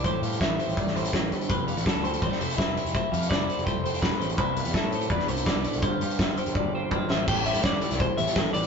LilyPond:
<<
  \new Staff \with { instrumentName = "Clean electric guitar" } { \time 4/4 \key a \minor \tempo 4 = 166 c''8 f''8 e''8 c''8 d''8 c''8 b'8 c''8 | c''8 f''8 e''8 c''8 d''8 c''8 b'8 c''8 | c''8 f''8 e''8 c''8 d''8 c''8 b'8 c''8 | c''8 f''8 e''8 c''8 d''8 c''8 b'8 c''8 |
c''8 f''8 e''8 c''8 d''8 c''8 b'8 c''8 | a'8 c''8 a'8 g'8 c''8 g'8 a'8 b'8 | }
  \new Staff \with { instrumentName = "Clean electric guitar" } { \time 4/4 \key a \minor c''4 e''2~ e''8 r8 | b'4 a'4 c''4 e''4 | e''4 d''4 c''4 b'8. r16 | b'4 a'4 b'8 c''8 d''4 |
c''2~ c''8 c''4 e''8 | g''8 e''8 d''4 c''8 e''4 d''8 | }
  \new Staff \with { instrumentName = "Clean electric guitar" } { \time 4/4 \key a \minor << { <e g c' g'>8 g8 g'8 c'8 g8 c'4. | e'8 g16 a16 e'8 c'8 g16 a16 c'8 e'8 c'8 | e'8 g16 a16 e'8 c'8 a8 c'4. | e'8 b8 e'8 b16 d'16 b8 d'4. |
f'8 g8 f'8 c'8 g8 c'8 f'8 c'8 | <g c' g'>8 c'8 g2 g'8 c'8 | } \\ { a,2. a,8 g,8 | f,1 | f,2. a,8 b,8 | c2. b,8 a,8 |
g,1 | a,4. e4 e,4. | } >> }
  \new Staff \with { instrumentName = "Picked electric bass" } { \clef bass \time 4/4 \key a \minor a,,8 a,8 a,,8 r16 a,,16 r16 a,,8. a,,8 g,,8 | f,,8. a,,16 r16 d,8. a,,16 r16 f,,8 r16 f,,16 r16 f,,16~ | f,,16 r16 f,8 f,,8 r16 f,,16 r16 f,,8. e,,16 r16 a,,8 | c,8. e,16 r16 a,8. e,16 r16 c,8 r16 c,16 r16 c,16 |
g,,8 g,8 g,,8 r16 g,,16 r16 g,,8. g,,8 a,,8 | a,,8. a,8 g,,8 c,8 r16 a,,16 r16 a,,16 r16 a,,8 | }
  \new DrumStaff \with { instrumentName = "Drums" } \drummode { \time 4/4 <hh bd>8 hh16 hh16 <hh bd sn>8 hh16 hh16 <hh bd>16 sn16 hh16 hh16 <hh bd sn>8 hh16 hh16 | <hh bd>8 hh16 hh16 <hh bd sn>8 hh16 hh16 <hh bd>16 sn16 hh16 hh16 <hh bd sn>8 hh16 hh16 | <hh bd>8 hh16 hh16 <hh bd sn>8 hh16 hh16 <hh bd>8 hh16 hh16 <hh bd sn>8 hh16 hh16 | <hh bd>8 hh16 hh16 <hh bd sn>8 hh16 hh16 <hh bd>16 sn16 hh16 hh16 <hh bd sn>8 hh16 hh16 |
<hh bd>8 hh16 hh16 <hh bd sn>8 hh16 hh16 bd4 <bd toml>8 sn8 | <cymc bd>8 hh16 hh16 <hh bd sn>8 hh16 <hh sn>16 <hh bd>8 hh16 hh16 <hh bd sn>8 hh16 hh16 | }
>>